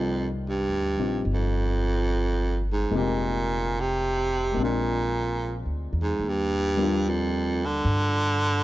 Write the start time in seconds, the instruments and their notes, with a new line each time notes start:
Already playing: upright bass C2, baritone saxophone F2, grand piano G3 A#3 D4 D#4 F4
0.49 baritone saxophone G2
0.69 upright bass D2
0.97 upright bass A#1, grand piano C4 D#4 F4 G4
1.25 upright bass G1
1.34 baritone saxophone F2
2.72 baritone saxophone G#2
2.91 upright bass F1, grand piano G#3 A#3 C4 D#4
2.95 baritone saxophone A#2, grand piano G4
3.80 baritone saxophone C3
4.52 upright bass A#1, grand piano G#3 A#3
4.58 grand piano C4 D4
4.62 baritone saxophone A#2, grand piano F4
5.66 upright bass D2
5.93 upright bass E2
6.02 baritone saxophone G#2
6.19 upright bass D#2
6.29 baritone saxophone G2
6.77 grand piano G3 A#3 D4 G4
6.81 grand piano F4
7.09 baritone saxophone F2
7.66 baritone saxophone D3
7.85 upright bass G2